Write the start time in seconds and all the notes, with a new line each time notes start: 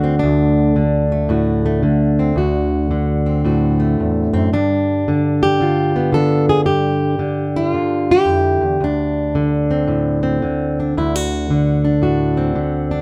Already playing: D2 D3 A3 F#4
0.04 C4
0.19 D4
0.23 D2
0.76 D3
1.12 A3
1.29 A2 F#4
1.66 A3
1.83 D3
2.19 C4
2.36 D2 F#4
2.91 D3
3.26 C4
3.45 A2 F#4
3.80 A3
4.00 E2
4.33 F#2 C4
4.53 G2 D4
5.08 D3
5.43 G4
5.60 D3 F4
5.96 B3
6.12 D3 A4
6.49 G#4
6.66 G2 G4
7.19 D3
7.56 E4
7.69 F4
7.74 D3
8.11 G4
8.26 F2
8.33 E4
8.61 E2
8.80 D2 D4
9.35 D3
9.71 C4
9.88 A2
10.23 C4
10.42 D3
10.80 D4
10.97 D2 E4
11.16 F#4
11.50 D3
11.85 D4
12.02 A2 F#4
12.37 C4
12.55 D3
12.91 D4